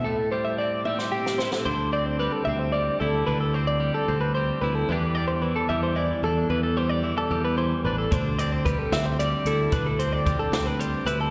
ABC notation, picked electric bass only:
X:1
M:6/8
L:1/8
Q:3/8=74
K:Ddor
V:1 name="Picked electric bass" clef=bass
z6 | D,,3 D,,2 D,, | D,,3 D,,2 D,, | E,,3 E,,2 E,, |
E,,3 E,,2 A,,, | D,,3 D,,2 D,, | D,,3 D,,2 D,, |]